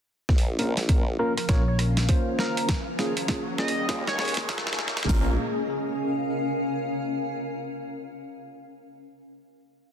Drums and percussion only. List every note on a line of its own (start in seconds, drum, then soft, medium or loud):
0.29 kick medium
0.29 snare soft
0.38 closed hi-hat medium
0.59 closed hi-hat soft
0.77 snare soft
0.77 closed hi-hat medium
0.89 kick loud
0.89 closed hi-hat medium
1.38 cross-stick soft
1.38 closed hi-hat medium
1.49 kick loud
1.49 snare medium
1.49 closed hi-hat medium
1.79 cross-stick medium
1.79 closed hi-hat medium
1.97 snare medium
1.97 closed hi-hat medium
2.09 kick medium
2.09 closed hi-hat medium
2.39 snare medium
2.57 closed hi-hat medium
2.69 kick loud
2.69 snare medium
2.69 closed hi-hat medium
2.99 snare medium
2.99 closed hi-hat soft
3.17 closed hi-hat medium
3.28 kick medium
3.28 snare medium
3.28 closed hi-hat medium
3.58 snare medium
3.68 closed hi-hat medium
3.89 kick loud
3.89 snare medium
3.89 closed hi-hat medium
4.07 snare medium
4.19 snare loud
4.19 closed hi-hat soft
4.22 closed hi-hat soft
4.25 closed hi-hat soft
4.28 closed hi-hat soft
4.34 snare medium
4.34 closed hi-hat medium
4.37 closed hi-hat medium
4.49 kick loud
4.49 snare loud
4.49 closed hi-hat medium
4.58 snare medium
4.67 snare loud
4.73 snare loud
4.79 snare loud
4.88 snare medium
4.97 snare loud
4.97 closed hi-hat medium
5.03 snare loud
5.09 kick loud
5.09 snare loud
5.09 open hi-hat medium